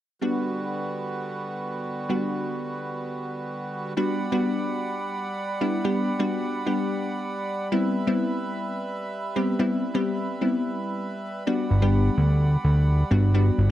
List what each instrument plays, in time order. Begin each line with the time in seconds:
0.21 harmonium D3 G3 B3 F#4 B4, synth pluck G3 B3 D4 F#4
2.09 synth pluck G3 B3 D4 F#4
3.97 synth pluck G3 B3 D4 F#4, harmonium G3 D5 F#5 B5
4.32 synth pluck G3 B3 D4 F#4
5.61 synth pluck G3 B3 D4 E4
5.84 synth pluck G3 B3 D4 G4
6.19 synth pluck G3 B3 D4 F#4
6.66 synth pluck G3 B3 D4 G4
7.72 synth pluck G3 B3 C4 E4, harmonium B4 E5
8.07 synth pluck G3 B3 C4 E4
9.36 synth pluck G3 B3 C4 G4
9.59 synth pluck G3 B3 C4 E4
9.94 synth pluck G3 B3 C4 G4
10.41 synth pluck G3 B3 C4 E4
11.47 synth pluck G3 B3 D4 F#4, harmonium D5 F#5
11.70 analog synth bass G1
11.82 synth pluck G3 B3 D4 G4
12.17 analog synth bass D2
12.64 analog synth bass D2
13.11 analog synth bass G1, synth pluck G3 B3 D4 F#4
13.34 synth pluck G3 B3 D4 F#4
13.58 analog synth bass G1